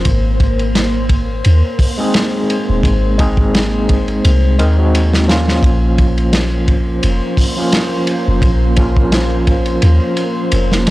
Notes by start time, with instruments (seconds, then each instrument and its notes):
Already playing: ambient pad A#3 C5
0.05 808-style bass G#1, kick, ride
0.40 kick, ride
0.59 ride
0.75 snare, ride
1.09 kick, ride
1.44 808-style bass D#2, ride
1.79 kick, open hi-hat
1.98 tine electric piano G#3 C4 D#4 G#4
2.14 snare, ride
2.50 ride
2.69 808-style bass D#1
2.83 808-style bass G#1, kick, ride
3.18 tine electric piano G#3 C4 D#4 G#4, kick, ride
3.37 kick
3.54 snare, ride
3.89 kick, ride
4.08 ride
4.25 808-style bass C2, ride
4.59 808-style bass D#2, tine electric piano G#3 C4 D#4 A#4, ride
4.78 tine electric piano G#3 C4 D#4 F#4
4.95 ride
5.13 snare
5.28 tine electric piano F3 A#3 C#4 F4, snare, ride
5.48 snare
5.63 808-style bass A#1, ambient pad A#3 C5, kick, ride
5.98 kick, ride
6.18 ride
6.33 snare, ride
6.68 kick, ride
7.03 808-style bass F1, ride
7.37 kick, open hi-hat
7.56 tine electric piano F3 A#3 C#4 F4
7.72 snare, ride
8.07 ride
8.28 808-style bass F1
8.42 808-style bass A#1, kick, ride
8.76 tine electric piano F3 A#3 C#4 F4, kick, ride
8.97 kick
9.12 snare, ride
9.47 kick, ride
9.65 ride
9.82 808-style bass D#2, ride
10.17 ride
10.52 808-style bass F1, ride
10.72 snare
10.87 ride